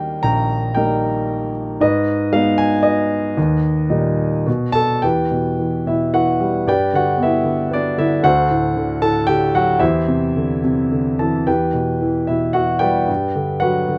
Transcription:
Already playing: D#2 G3 A#3 D#4 G4 D#5 F5 G5
0.23 A#1 G5 A#5
0.75 G3 A#3 D#4 A#4 G5
1.80 G#2 B4 D#5
2.33 G#3 B3 D#4 F5
2.58 G#5
2.83 B4 D#5
3.37 D#2
3.90 A#2 G3 D#4
4.47 B2
4.72 A4 A5
5.02 E2 G4 B4 G5
5.31 B2
5.59 E3
5.86 B2 E4 E5
6.13 E3 F#4 B4 F#5
6.40 G3
6.67 G2 G4 B4 D5 G5
6.93 D3 F#4 F#5
7.17 B3
7.23 E4 B4 E5
7.44 D3
7.71 B3 D4 D5
7.98 D3 E4 E5
8.23 D2 F#4 A4 C5 F#5
8.50 A2
8.76 D3
9.02 A2 A4 A5
9.27 D3 G4 G5
9.54 F#3 F#4 F#5
9.80 E2 E4 G4 C5 E5
10.08 C3
10.37 D3
10.64 C3
10.91 D3
11.19 E3 A4 A5
11.47 E2 G4 B4 G5
11.74 B2
12.02 E3
12.27 B2 E4 E5
12.53 E3 F#4 F#5
12.79 G3 G4 B4 D5 G5
13.08 G2
13.36 D3
13.60 F#3 F#4 B4 F#5
13.88 D3

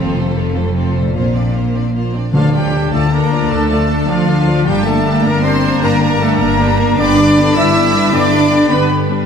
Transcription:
Already playing: F1 F2 F3 A3 C4 F4 A4
0.00 F4
0.17 A3 A4 C5
0.37 C4 F4 A4
0.56 A3 A4 C5
0.76 C4 F4 A4
0.95 A#2 A3 A4 C5
1.02 C4
1.06 D4
1.10 F4
1.15 A#1 A#2 A#3 F4 C5
1.35 C4 D4 D5
1.54 A#3 F4 C5
1.74 C4 D4 D5
1.94 A#3 F4 C5
2.13 C4 D4 D5
2.32 D2 D3 F3 D4 F4 A4 D5 F5 A5
2.52 F3 G3 A3 F4 G4 D5 G5
2.71 D3 D4 A4
2.75 D4
2.90 D2 F3 A3 F4 A4 A5
2.94 F4 D5
3.10 D3 A#3 D4 A4 A#4 A#5
3.14 D4
3.30 F3 A3 D4 F4 D5
3.49 D2 D3 A3 D4 A4 A5
3.68 F3 A3 F4 A4 D5 A5
3.88 D3 D4 A4
4.07 D2 F3 A3 F4 D5 F5
4.26 D3 D4 A4
4.45 F3 A3 D4 F4 D5
4.65 G1 G2 G3 A#3 D4 G4 D5 G5
4.69 A#5
4.83 D3 A3 A#3 D4 A4 A#4 A5
5.03 G3 A#3 D4 G4
5.21 G1 A#3 D4 A#4 A#5
5.25 D4 A#4
5.42 G3 A#3 C4 D4 G4 A#4 C5 C6
5.63 G3 A#3 D4 A#4
5.81 G1 G2 G3 A#3 D4 G4 A#4 A#5
6.00 D3 A#3 D4 A#4 A#5
6.19 G3 A3 A#3 D4 G4 A4 A5
6.37 G1 A#3 A#5
6.41 D4 A#4
6.61 G3 A#3 D4 G4 A#4
6.79 G3 A#3 D4 A#4
6.95 G1 G2 D3 B3 D4 G4 D5 D6
7.00 B3 B5
7.17 D3 G3 D4 B4
7.37 D3 G3 B3 G4
7.55 G1 G3 D4 E4 B4 E5 E6
7.75 D3 B3 G4 B4
7.93 G3 D4 B4
8.12 G1 G2 D3 B3 D4 G4 D5 D6
8.31 D3 G3 D4 B4
8.50 D3 G3 B3 G4
8.69 G1 G3 B3 D4 B4 B5
8.89 D3 B3 G4 B4
9.09 G3 D4 B4

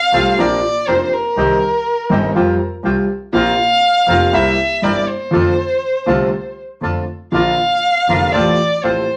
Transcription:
Already playing: F5
0.12 C2 C3 F3 A3 C4 F4 A4
0.37 A#1 A#2 C3 F3 A#3 C4 D4 A#4 D5
0.87 F1 F2 C3 F3 A#3 C4 D4 A#4 C5
1.14 A#4
1.37 C2 C3 D#3 G3 C4 D#4 G4
2.09 G1 G2 C3 D#3 G3 C4 D#4 G4
2.35 F2 C3 F3 G3 C4 F4 G4
2.83 C2 C3 F3 G3 C4 F4 G4
3.33 A#1 A#2 C3 F3 A#3 C4 F4 A#4 F5
4.07 F1 F2 C3 F3 A#3 C4 F4 A#4
4.32 C2 C3 G3 A#3 C4 E4 A#4 E5
4.82 G1 G2 C3 G3 A#3 C4 E4 A#4 D5
5.07 C5
5.31 F2 D3 F3 A3 C4 D4 F4 A4
6.06 C2 C3 D3 A3 C4 D4 F4 A4
6.81 F2 D3 F3 A3 C4 D4 F4 A4
7.32 A#1 A#2 D3 F3 A#3 D4 F4 A#4 F5
8.08 F1 F2 D3 F3 A#3 D4 F4 A#4
8.32 A1 A2 C3 F3 A3 C4 F4 A4 D5
8.83 A1 A2 C3 F3 A3 C4 F4 A4 C5

